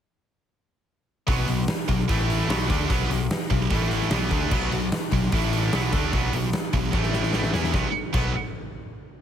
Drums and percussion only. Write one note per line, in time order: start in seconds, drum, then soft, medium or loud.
1.28 kick medium
1.28 open hi-hat medium
1.48 open hi-hat medium
1.68 snare loud
1.68 open hi-hat medium
1.89 kick medium
1.89 open hi-hat medium
1.99 snare soft
2.09 kick loud
2.09 open hi-hat medium
2.30 open hi-hat medium
2.40 snare soft
2.50 snare loud
2.50 open hi-hat medium
2.70 kick medium
2.70 open hi-hat medium
2.90 kick medium
2.90 open hi-hat medium
3.11 open hi-hat medium
3.31 snare loud
3.31 open hi-hat medium
3.50 kick medium
3.50 open hi-hat medium
3.61 snare soft
3.71 kick loud
3.71 open hi-hat medium
3.91 open hi-hat medium
4.01 snare soft
4.11 snare loud
4.11 open hi-hat medium
4.31 kick medium
4.31 open hi-hat medium
4.51 kick loud
4.51 crash medium
4.72 open hi-hat medium
4.92 snare loud
4.92 open hi-hat medium
5.12 kick medium
5.12 open hi-hat medium
5.23 snare soft
5.32 kick loud
5.32 open hi-hat medium
5.53 open hi-hat medium
5.62 snare soft
5.73 snare loud
5.73 open hi-hat medium
5.92 kick medium
5.92 open hi-hat medium
6.13 kick loud
6.13 open hi-hat medium
6.33 open hi-hat medium
6.53 snare loud
6.53 open hi-hat medium
6.73 kick medium
6.73 open hi-hat medium
6.83 snare soft
6.93 kick loud
6.93 snare medium
7.03 snare medium
7.13 snare medium
7.23 snare medium
7.33 snare medium
7.43 snare medium
7.54 snare medium
7.64 snare medium
7.74 kick medium
7.74 snare medium
8.14 kick loud
8.14 crash medium